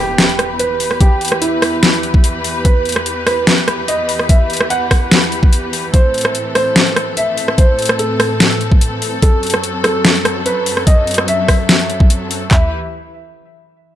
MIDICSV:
0, 0, Header, 1, 5, 480
1, 0, Start_track
1, 0, Key_signature, 1, "minor"
1, 0, Tempo, 410959
1, 1175, Time_signature, 4, 2, 24, 8
1, 16297, End_track
2, 0, Start_track
2, 0, Title_t, "Grand piano"
2, 0, Program_c, 0, 0
2, 0, Note_on_c, 0, 67, 91
2, 602, Note_off_c, 0, 67, 0
2, 694, Note_on_c, 0, 71, 86
2, 1081, Note_off_c, 0, 71, 0
2, 1174, Note_on_c, 0, 67, 81
2, 1561, Note_off_c, 0, 67, 0
2, 1653, Note_on_c, 0, 64, 86
2, 3002, Note_off_c, 0, 64, 0
2, 3094, Note_on_c, 0, 71, 92
2, 3722, Note_off_c, 0, 71, 0
2, 3815, Note_on_c, 0, 71, 92
2, 4443, Note_off_c, 0, 71, 0
2, 4534, Note_on_c, 0, 75, 84
2, 4921, Note_off_c, 0, 75, 0
2, 5014, Note_on_c, 0, 76, 81
2, 5401, Note_off_c, 0, 76, 0
2, 5494, Note_on_c, 0, 78, 88
2, 6842, Note_off_c, 0, 78, 0
2, 6934, Note_on_c, 0, 72, 91
2, 7563, Note_off_c, 0, 72, 0
2, 7654, Note_on_c, 0, 72, 93
2, 8282, Note_off_c, 0, 72, 0
2, 8375, Note_on_c, 0, 76, 89
2, 8762, Note_off_c, 0, 76, 0
2, 8855, Note_on_c, 0, 72, 83
2, 9242, Note_off_c, 0, 72, 0
2, 9335, Note_on_c, 0, 69, 87
2, 10683, Note_off_c, 0, 69, 0
2, 10775, Note_on_c, 0, 69, 95
2, 11403, Note_off_c, 0, 69, 0
2, 11496, Note_on_c, 0, 69, 97
2, 12123, Note_off_c, 0, 69, 0
2, 12215, Note_on_c, 0, 71, 90
2, 12602, Note_off_c, 0, 71, 0
2, 12694, Note_on_c, 0, 75, 84
2, 13081, Note_off_c, 0, 75, 0
2, 13175, Note_on_c, 0, 76, 94
2, 14523, Note_off_c, 0, 76, 0
2, 14614, Note_on_c, 0, 76, 84
2, 14795, Note_off_c, 0, 76, 0
2, 16297, End_track
3, 0, Start_track
3, 0, Title_t, "String section"
3, 0, Program_c, 1, 48
3, 0, Note_on_c, 1, 40, 73
3, 0, Note_on_c, 1, 52, 67
3, 0, Note_on_c, 1, 67, 67
3, 0, Note_on_c, 1, 71, 83
3, 6887, Note_off_c, 1, 40, 0
3, 6887, Note_off_c, 1, 67, 0
3, 6887, Note_off_c, 1, 71, 0
3, 6934, Note_on_c, 1, 45, 75
3, 6934, Note_on_c, 1, 60, 70
3, 6934, Note_on_c, 1, 69, 83
3, 10727, Note_off_c, 1, 52, 0
3, 10736, Note_off_c, 1, 45, 0
3, 10775, Note_on_c, 1, 42, 77
3, 10775, Note_on_c, 1, 54, 67
3, 14567, Note_off_c, 1, 60, 0
3, 14567, Note_off_c, 1, 69, 0
3, 14576, Note_off_c, 1, 54, 0
3, 14577, Note_off_c, 1, 42, 0
3, 14614, Note_on_c, 1, 52, 70
3, 14614, Note_on_c, 1, 64, 63
3, 14614, Note_on_c, 1, 67, 64
3, 14614, Note_on_c, 1, 71, 75
3, 14838, Note_off_c, 1, 52, 0
3, 14838, Note_off_c, 1, 64, 0
3, 14838, Note_off_c, 1, 67, 0
3, 14838, Note_off_c, 1, 71, 0
3, 16297, End_track
4, 0, Start_track
4, 0, Title_t, "Impact"
4, 0, Program_c, 2, 103
4, 0, Note_on_c, 2, 60, 69
4, 1174, Note_off_c, 2, 60, 0
4, 16297, End_track
5, 0, Start_track
5, 0, Title_t, "Drums"
5, 215, Note_on_c, 9, 38, 110
5, 215, Note_on_c, 9, 42, 78
5, 332, Note_off_c, 9, 38, 0
5, 332, Note_off_c, 9, 42, 0
5, 340, Note_on_c, 9, 42, 35
5, 455, Note_off_c, 9, 42, 0
5, 455, Note_on_c, 9, 37, 71
5, 455, Note_on_c, 9, 42, 54
5, 572, Note_off_c, 9, 37, 0
5, 572, Note_off_c, 9, 42, 0
5, 695, Note_on_c, 9, 42, 82
5, 812, Note_off_c, 9, 42, 0
5, 935, Note_on_c, 9, 46, 91
5, 1052, Note_off_c, 9, 46, 0
5, 1059, Note_on_c, 9, 37, 59
5, 1175, Note_on_c, 9, 36, 122
5, 1175, Note_on_c, 9, 42, 83
5, 1176, Note_off_c, 9, 37, 0
5, 1291, Note_off_c, 9, 36, 0
5, 1291, Note_off_c, 9, 42, 0
5, 1415, Note_on_c, 9, 42, 49
5, 1456, Note_off_c, 9, 42, 0
5, 1456, Note_on_c, 9, 42, 66
5, 1495, Note_off_c, 9, 42, 0
5, 1495, Note_on_c, 9, 42, 81
5, 1539, Note_on_c, 9, 37, 72
5, 1611, Note_off_c, 9, 42, 0
5, 1655, Note_on_c, 9, 42, 79
5, 1656, Note_off_c, 9, 37, 0
5, 1771, Note_off_c, 9, 42, 0
5, 1895, Note_on_c, 9, 37, 76
5, 1895, Note_on_c, 9, 46, 61
5, 2011, Note_off_c, 9, 37, 0
5, 2011, Note_off_c, 9, 46, 0
5, 2134, Note_on_c, 9, 38, 119
5, 2134, Note_on_c, 9, 42, 80
5, 2251, Note_off_c, 9, 38, 0
5, 2251, Note_off_c, 9, 42, 0
5, 2260, Note_on_c, 9, 42, 36
5, 2374, Note_off_c, 9, 42, 0
5, 2374, Note_on_c, 9, 42, 52
5, 2491, Note_off_c, 9, 42, 0
5, 2499, Note_on_c, 9, 36, 112
5, 2614, Note_on_c, 9, 42, 83
5, 2616, Note_off_c, 9, 36, 0
5, 2731, Note_off_c, 9, 42, 0
5, 2854, Note_on_c, 9, 46, 87
5, 2971, Note_off_c, 9, 46, 0
5, 3094, Note_on_c, 9, 36, 124
5, 3094, Note_on_c, 9, 42, 78
5, 3211, Note_off_c, 9, 36, 0
5, 3211, Note_off_c, 9, 42, 0
5, 3334, Note_on_c, 9, 42, 48
5, 3376, Note_off_c, 9, 42, 0
5, 3376, Note_on_c, 9, 42, 64
5, 3414, Note_off_c, 9, 42, 0
5, 3414, Note_on_c, 9, 42, 77
5, 3459, Note_on_c, 9, 37, 74
5, 3531, Note_off_c, 9, 42, 0
5, 3574, Note_on_c, 9, 42, 80
5, 3576, Note_off_c, 9, 37, 0
5, 3691, Note_off_c, 9, 42, 0
5, 3815, Note_on_c, 9, 37, 77
5, 3815, Note_on_c, 9, 46, 60
5, 3931, Note_off_c, 9, 37, 0
5, 3931, Note_off_c, 9, 46, 0
5, 4055, Note_on_c, 9, 38, 123
5, 4055, Note_on_c, 9, 42, 81
5, 4172, Note_off_c, 9, 38, 0
5, 4172, Note_off_c, 9, 42, 0
5, 4180, Note_on_c, 9, 42, 35
5, 4295, Note_off_c, 9, 42, 0
5, 4295, Note_on_c, 9, 37, 77
5, 4295, Note_on_c, 9, 42, 52
5, 4412, Note_off_c, 9, 37, 0
5, 4412, Note_off_c, 9, 42, 0
5, 4535, Note_on_c, 9, 42, 79
5, 4651, Note_off_c, 9, 42, 0
5, 4774, Note_on_c, 9, 46, 86
5, 4891, Note_off_c, 9, 46, 0
5, 4899, Note_on_c, 9, 37, 60
5, 5014, Note_on_c, 9, 36, 123
5, 5014, Note_on_c, 9, 42, 81
5, 5016, Note_off_c, 9, 37, 0
5, 5131, Note_off_c, 9, 36, 0
5, 5131, Note_off_c, 9, 42, 0
5, 5254, Note_on_c, 9, 42, 47
5, 5295, Note_off_c, 9, 42, 0
5, 5295, Note_on_c, 9, 42, 61
5, 5334, Note_off_c, 9, 42, 0
5, 5334, Note_on_c, 9, 42, 73
5, 5379, Note_on_c, 9, 37, 78
5, 5450, Note_off_c, 9, 42, 0
5, 5494, Note_on_c, 9, 42, 76
5, 5496, Note_off_c, 9, 37, 0
5, 5610, Note_off_c, 9, 42, 0
5, 5734, Note_on_c, 9, 37, 79
5, 5734, Note_on_c, 9, 46, 60
5, 5735, Note_on_c, 9, 36, 61
5, 5851, Note_off_c, 9, 36, 0
5, 5851, Note_off_c, 9, 37, 0
5, 5851, Note_off_c, 9, 46, 0
5, 5974, Note_on_c, 9, 38, 124
5, 5974, Note_on_c, 9, 42, 76
5, 6091, Note_off_c, 9, 38, 0
5, 6091, Note_off_c, 9, 42, 0
5, 6099, Note_on_c, 9, 42, 34
5, 6214, Note_off_c, 9, 42, 0
5, 6214, Note_on_c, 9, 42, 50
5, 6331, Note_off_c, 9, 42, 0
5, 6340, Note_on_c, 9, 36, 108
5, 6454, Note_on_c, 9, 42, 76
5, 6456, Note_off_c, 9, 36, 0
5, 6571, Note_off_c, 9, 42, 0
5, 6694, Note_on_c, 9, 46, 83
5, 6811, Note_off_c, 9, 46, 0
5, 6934, Note_on_c, 9, 42, 75
5, 6935, Note_on_c, 9, 36, 119
5, 7051, Note_off_c, 9, 36, 0
5, 7051, Note_off_c, 9, 42, 0
5, 7174, Note_on_c, 9, 42, 45
5, 7216, Note_off_c, 9, 42, 0
5, 7216, Note_on_c, 9, 42, 61
5, 7254, Note_off_c, 9, 42, 0
5, 7254, Note_on_c, 9, 42, 75
5, 7299, Note_on_c, 9, 37, 82
5, 7371, Note_off_c, 9, 42, 0
5, 7414, Note_on_c, 9, 42, 76
5, 7416, Note_off_c, 9, 37, 0
5, 7531, Note_off_c, 9, 42, 0
5, 7654, Note_on_c, 9, 37, 83
5, 7654, Note_on_c, 9, 46, 60
5, 7771, Note_off_c, 9, 37, 0
5, 7771, Note_off_c, 9, 46, 0
5, 7894, Note_on_c, 9, 38, 117
5, 7894, Note_on_c, 9, 42, 77
5, 8011, Note_off_c, 9, 38, 0
5, 8011, Note_off_c, 9, 42, 0
5, 8019, Note_on_c, 9, 42, 34
5, 8134, Note_off_c, 9, 42, 0
5, 8134, Note_on_c, 9, 37, 80
5, 8134, Note_on_c, 9, 42, 50
5, 8251, Note_off_c, 9, 37, 0
5, 8251, Note_off_c, 9, 42, 0
5, 8374, Note_on_c, 9, 42, 75
5, 8491, Note_off_c, 9, 42, 0
5, 8614, Note_on_c, 9, 46, 87
5, 8731, Note_off_c, 9, 46, 0
5, 8739, Note_on_c, 9, 37, 64
5, 8854, Note_on_c, 9, 42, 76
5, 8855, Note_on_c, 9, 36, 114
5, 8856, Note_off_c, 9, 37, 0
5, 8971, Note_off_c, 9, 42, 0
5, 8972, Note_off_c, 9, 36, 0
5, 9095, Note_on_c, 9, 42, 44
5, 9136, Note_off_c, 9, 42, 0
5, 9136, Note_on_c, 9, 42, 61
5, 9175, Note_off_c, 9, 42, 0
5, 9175, Note_on_c, 9, 42, 74
5, 9219, Note_on_c, 9, 37, 82
5, 9291, Note_off_c, 9, 42, 0
5, 9334, Note_on_c, 9, 42, 76
5, 9336, Note_off_c, 9, 37, 0
5, 9451, Note_off_c, 9, 42, 0
5, 9574, Note_on_c, 9, 37, 82
5, 9574, Note_on_c, 9, 46, 60
5, 9691, Note_off_c, 9, 37, 0
5, 9691, Note_off_c, 9, 46, 0
5, 9814, Note_on_c, 9, 38, 112
5, 9814, Note_on_c, 9, 42, 74
5, 9931, Note_off_c, 9, 38, 0
5, 9931, Note_off_c, 9, 42, 0
5, 9939, Note_on_c, 9, 42, 32
5, 10054, Note_off_c, 9, 42, 0
5, 10054, Note_on_c, 9, 42, 49
5, 10171, Note_off_c, 9, 42, 0
5, 10180, Note_on_c, 9, 36, 103
5, 10294, Note_on_c, 9, 42, 77
5, 10297, Note_off_c, 9, 36, 0
5, 10410, Note_off_c, 9, 42, 0
5, 10534, Note_on_c, 9, 46, 87
5, 10651, Note_off_c, 9, 46, 0
5, 10774, Note_on_c, 9, 42, 78
5, 10775, Note_on_c, 9, 36, 117
5, 10891, Note_off_c, 9, 36, 0
5, 10891, Note_off_c, 9, 42, 0
5, 11014, Note_on_c, 9, 42, 47
5, 11056, Note_off_c, 9, 42, 0
5, 11056, Note_on_c, 9, 42, 60
5, 11094, Note_off_c, 9, 42, 0
5, 11094, Note_on_c, 9, 42, 77
5, 11139, Note_on_c, 9, 37, 80
5, 11211, Note_off_c, 9, 42, 0
5, 11254, Note_on_c, 9, 42, 78
5, 11256, Note_off_c, 9, 37, 0
5, 11371, Note_off_c, 9, 42, 0
5, 11494, Note_on_c, 9, 37, 85
5, 11494, Note_on_c, 9, 46, 62
5, 11611, Note_off_c, 9, 37, 0
5, 11611, Note_off_c, 9, 46, 0
5, 11734, Note_on_c, 9, 38, 110
5, 11734, Note_on_c, 9, 42, 76
5, 11851, Note_off_c, 9, 38, 0
5, 11851, Note_off_c, 9, 42, 0
5, 11859, Note_on_c, 9, 42, 35
5, 11974, Note_off_c, 9, 42, 0
5, 11974, Note_on_c, 9, 37, 78
5, 11974, Note_on_c, 9, 42, 51
5, 12091, Note_off_c, 9, 37, 0
5, 12091, Note_off_c, 9, 42, 0
5, 12214, Note_on_c, 9, 42, 78
5, 12331, Note_off_c, 9, 42, 0
5, 12454, Note_on_c, 9, 46, 94
5, 12571, Note_off_c, 9, 46, 0
5, 12580, Note_on_c, 9, 37, 62
5, 12695, Note_on_c, 9, 36, 116
5, 12695, Note_on_c, 9, 42, 83
5, 12696, Note_off_c, 9, 37, 0
5, 12811, Note_off_c, 9, 36, 0
5, 12811, Note_off_c, 9, 42, 0
5, 12934, Note_on_c, 9, 42, 49
5, 12976, Note_off_c, 9, 42, 0
5, 12976, Note_on_c, 9, 42, 65
5, 13014, Note_off_c, 9, 42, 0
5, 13014, Note_on_c, 9, 42, 78
5, 13060, Note_on_c, 9, 37, 79
5, 13131, Note_off_c, 9, 42, 0
5, 13175, Note_on_c, 9, 42, 80
5, 13177, Note_off_c, 9, 37, 0
5, 13291, Note_off_c, 9, 42, 0
5, 13414, Note_on_c, 9, 36, 59
5, 13414, Note_on_c, 9, 37, 81
5, 13414, Note_on_c, 9, 46, 68
5, 13531, Note_off_c, 9, 36, 0
5, 13531, Note_off_c, 9, 37, 0
5, 13531, Note_off_c, 9, 46, 0
5, 13654, Note_on_c, 9, 38, 115
5, 13654, Note_on_c, 9, 42, 78
5, 13771, Note_off_c, 9, 38, 0
5, 13771, Note_off_c, 9, 42, 0
5, 13779, Note_on_c, 9, 42, 36
5, 13894, Note_off_c, 9, 42, 0
5, 13894, Note_on_c, 9, 42, 53
5, 14011, Note_off_c, 9, 42, 0
5, 14020, Note_on_c, 9, 36, 107
5, 14134, Note_on_c, 9, 42, 81
5, 14136, Note_off_c, 9, 36, 0
5, 14251, Note_off_c, 9, 42, 0
5, 14374, Note_on_c, 9, 46, 95
5, 14491, Note_off_c, 9, 46, 0
5, 14614, Note_on_c, 9, 36, 108
5, 14614, Note_on_c, 9, 39, 89
5, 14614, Note_on_c, 9, 43, 107
5, 14731, Note_off_c, 9, 36, 0
5, 14731, Note_off_c, 9, 39, 0
5, 14731, Note_off_c, 9, 43, 0
5, 16297, End_track
0, 0, End_of_file